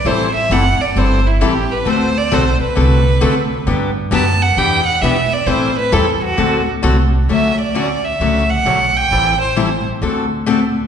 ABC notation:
X:1
M:4/4
L:1/8
Q:"Swing" 1/4=132
K:Dmix
V:1 name="Violin"
c e f d c E G B | c d c B4- B | z2 a f g f e d | c B A F2 z3 |
[K:D] e d2 e2 f2 g- | g =c2 z4 z |]
V:2 name="Steel-string acoustic guitar"
[E,G,CEA] z [E,G,CEA] z [E,G,CEA] z [E,G,CEA] z | [D,A,CFA] z [D,A,CFA] z [D,A,CFA] z [D,A,CFA] z | [D,F,B,DG] z [D,F,B,DG] z [E,B,DG] z [E,B,DG] z | [E,G,CEA] z [E,G,CEA] z [D,A,CFA] z [D,A,CFA] z |
[K:D] [D,F,A,CF] z [D,F,A,CF] z [D,F,A,CF] z [D,F,A,CF] z | [E,G,=CEA] z [E,G,CEA] z [D,A,CFA] z [D,A,CFA] z |]
V:3 name="Upright bass" clef=bass
A,,,2 F,,, z G,,,2 A,,,2 | D,,2 B,,, z C,,2 D,,2 | G,,2 F,,2 E,,2 B,,2 | A,,2 E,,2 D,,2 C,,2 |
[K:D] D,,4 C,,2 B,,,2 | A,,,4 D,,4 |]